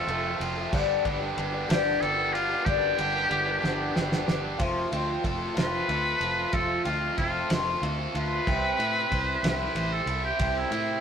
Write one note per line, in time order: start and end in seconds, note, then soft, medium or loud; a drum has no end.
0.00 0.10 F4 medium
0.00 0.46 A4 medium
0.07 0.33 F1 loud
0.07 0.24 F3 medium
0.07 0.42 A3 medium
0.07 0.25 C4 medium
0.07 0.25 E4 medium
0.07 0.23 A4 medium
0.07 ride medium
0.11 0.40 F4 medium
0.24 0.59 F3 soft
0.24 0.58 C4 medium
0.24 0.56 A4 medium
0.40 0.66 F1 medium
0.40 0.72 F3 medium
0.40 0.72 A3 medium
0.40 0.72 C4 medium
0.40 0.71 F4 medium
0.40 ride medium
0.57 0.73 F3 medium
0.57 0.73 C4 medium
0.57 0.74 E4 medium
0.57 0.73 A4 medium
0.72 0.98 G1 medium
0.72 1.05 G2 loud
0.72 1.05 D3 loud
0.72 1.03 G3 medium
0.72 1.04 B3 loud
0.72 1.05 D4 loud
0.72 1.06 G4 loud
0.72 kick loud
0.72 crash loud
1.04 1.31 G1 medium
1.04 1.21 G3 medium
1.04 1.21 B3 medium
1.04 1.20 D4 medium
1.04 1.19 G4 medium
1.04 kick medium
1.04 ride medium
1.20 1.55 G3 medium
1.20 1.54 B3 medium
1.20 1.53 D4 medium
1.20 1.52 G4 medium
1.37 1.63 G1 medium
1.37 1.70 G3 medium
1.37 1.69 B3 medium
1.37 1.68 D4 medium
1.37 1.67 G4 medium
1.37 ride medium
1.53 1.68 G3 soft
1.53 1.68 B3 medium
1.53 1.69 D4 medium
1.53 1.69 G4 medium
1.68 1.95 G1 loud
1.68 2.01 G2 medium
1.68 2.01 D3 medium
1.68 1.99 G3 medium
1.68 2.01 B3 medium
1.68 2.02 D4 medium
1.68 2.02 G4 loud
1.68 2.02 G4 medium
1.68 snare loud
1.68 ride loud
2.00 2.52 G1 medium
2.00 2.17 G3 medium
2.00 2.18 B3 medium
2.00 2.17 D4 medium
2.00 2.33 G4 medium
2.00 2.35 A4 loud
2.00 ride medium
2.17 2.51 G3 soft
2.17 2.51 B3 medium
2.17 2.49 D4 medium
2.17 2.48 G4 medium
2.33 2.66 G3 medium
2.33 2.65 B3 medium
2.33 2.65 D4 medium
2.33 2.66 F4 loud
2.33 2.64 G4 medium
2.33 ride medium
2.49 2.65 G3 soft
2.49 2.65 B3 soft
2.49 2.65 D4 medium
2.49 2.66 G4 medium
2.65 2.92 G1 loud
2.65 2.98 G2 medium
2.65 2.98 D3 medium
2.65 2.95 G3 medium
2.65 2.96 B3 medium
2.65 2.97 D4 medium
2.65 4.27 G4 loud
2.65 2.98 G4 medium
2.65 kick loud
2.65 ride loud
2.96 3.24 G1 medium
2.96 3.13 G3 medium
2.96 3.14 B3 medium
2.96 3.14 D4 medium
2.96 3.13 G4 medium
2.96 ride medium
3.02 3.28 G3 medium
3.14 3.47 G3 medium
3.14 3.46 B3 medium
3.14 3.45 D4 medium
3.14 3.44 G4 medium
3.30 3.56 G1 medium
3.30 3.64 G3 medium
3.30 3.64 B3 medium
3.30 3.62 D4 medium
3.30 3.61 G4 medium
3.30 ride medium
3.46 3.61 G3 medium
3.46 3.61 B3 medium
3.46 3.61 D4 medium
3.46 3.62 G4 medium
3.61 3.89 G1 loud
3.61 3.94 G2 medium
3.61 3.94 D3 medium
3.61 3.92 G3 medium
3.61 3.94 B3 loud
3.61 3.94 D4 loud
3.61 3.95 G4 loud
3.61 snare medium
3.94 4.21 G1 medium
3.94 4.11 G3 medium
3.94 4.11 B3 medium
3.94 4.10 D4 medium
3.94 4.08 G4 medium
3.94 snare medium
4.09 4.43 G3 medium
4.09 4.43 B3 medium
4.09 4.42 D4 medium
4.09 4.40 G4 medium
4.09 snare medium
4.27 4.53 G1 medium
4.27 4.59 G3 medium
4.27 4.58 B3 medium
4.27 4.58 D4 medium
4.27 4.58 G4 medium
4.27 snare medium
4.41 4.58 G3 medium
4.41 4.58 B3 medium
4.41 4.59 D4 medium
4.41 4.59 G4 medium
4.57 4.84 F1 loud
4.57 4.91 F2 medium
4.57 4.91 C3 medium
4.57 4.91 F3 medium
4.57 4.90 A3 loud
4.57 4.90 C4 medium
4.57 4.88 F4 loud
4.57 kick loud
4.57 ride loud
4.90 5.16 D2 medium
4.90 5.20 F3 soft
4.90 5.21 A3 medium
4.90 5.22 C4 medium
4.90 5.23 F4 medium
4.90 ride medium
5.21 5.48 F1 medium
5.21 5.55 F3 medium
5.21 5.55 A3 medium
5.21 5.55 C4 medium
5.21 5.54 F4 medium
5.21 kick medium
5.21 ride medium
5.25 5.87 A4 medium
5.55 5.81 F1 medium
5.55 5.89 F2 medium
5.55 5.89 C3 medium
5.55 5.85 F3 medium
5.55 5.87 A3 medium
5.55 5.88 C4 medium
5.55 5.88 F4 medium
5.55 6.55 B4 loud
5.55 snare loud
5.55 ride medium
5.86 6.13 D2 medium
5.86 6.20 F3 medium
5.86 6.21 A3 medium
5.86 6.20 C4 medium
5.86 6.19 F4 medium
5.86 7.17 A4 medium
5.86 ride medium
6.20 6.45 F1 medium
6.20 6.52 F3 soft
6.20 6.53 A3 soft
6.20 6.53 C4 soft
6.20 6.53 F4 soft
6.20 ride medium
6.53 6.77 F1 medium
6.53 6.85 F2 medium
6.53 6.85 C3 medium
6.53 6.86 F3 medium
6.53 6.85 A3 medium
6.53 6.84 C4 medium
6.53 6.83 F4 medium
6.53 6.85 A4 medium
6.53 kick loud
6.53 ride medium
6.85 7.09 D2 medium
6.85 7.16 F3 soft
6.85 7.17 A3 soft
6.85 7.18 C4 medium
6.85 7.17 F4 medium
6.85 ride medium
7.17 7.42 F1 medium
7.17 7.50 F3 medium
7.17 7.49 A3 medium
7.17 7.48 C4 medium
7.17 7.49 F4 medium
7.17 7.48 F4 medium
7.17 7.81 A4 medium
7.17 kick medium
7.17 ride medium
7.49 7.74 F1 medium
7.49 7.83 F2 medium
7.49 7.83 C3 medium
7.49 7.80 F3 medium
7.49 7.82 A3 medium
7.49 7.82 C4 medium
7.49 7.82 F4 medium
7.49 snare loud
7.49 ride loud
7.82 8.06 D2 medium
7.82 8.14 F3 medium
7.82 8.15 A3 medium
7.82 8.14 C4 medium
7.82 8.13 F4 medium
7.82 8.47 A4 medium
7.82 ride medium
8.14 8.38 D2 medium
8.14 8.48 F3 soft
8.14 8.48 A3 soft
8.14 8.47 C4 soft
8.14 8.47 F4 medium
8.14 9.56 B4 loud
8.14 ride medium
8.47 8.71 C2 medium
8.47 8.79 C3 medium
8.47 8.80 G3 medium
8.47 8.80 C4 medium
8.47 8.78 E4 medium
8.47 8.77 G4 medium
8.47 kick loud
8.47 crash medium
8.79 9.03 A2 medium
8.79 9.11 C4 soft
8.79 9.11 E4 soft
8.79 9.11 G4 medium
8.79 ride medium
9.10 9.36 C2 medium
9.10 9.43 G3 medium
9.10 9.43 C4 medium
9.10 9.42 E4 medium
9.10 9.42 G4 medium
9.10 9.75 C5 medium
9.10 kick medium
9.10 ride medium
9.43 9.67 C2 medium
9.43 9.76 C3 medium
9.43 9.72 G3 medium
9.43 9.73 C4 medium
9.43 9.75 E4 medium
9.43 9.75 G4 medium
9.43 snare loud
9.43 ride loud
9.60 9.94 B4 medium
9.74 9.99 A1 medium
9.74 10.07 G3 medium
9.74 10.07 C4 medium
9.74 10.07 E4 medium
9.74 10.05 G4 medium
9.74 11.01 C5 medium
9.74 ride medium
9.92 10.23 A4 medium
10.06 10.31 C2 medium
10.06 10.39 C4 soft
10.06 10.39 E4 medium
10.06 10.39 G4 soft
10.06 ride medium
10.25 10.56 G4 medium
10.39 10.64 C2 medium
10.39 10.72 C3 medium
10.39 10.72 G3 medium
10.39 10.72 C4 medium
10.39 10.72 E4 medium
10.39 10.70 G4 medium
10.39 kick loud
10.39 ride medium
10.57 11.01 E4 medium
10.71 10.95 A2 medium
10.71 11.01 E4 medium
10.71 11.01 G4 medium
10.71 ride medium
10.75 11.01 C4 soft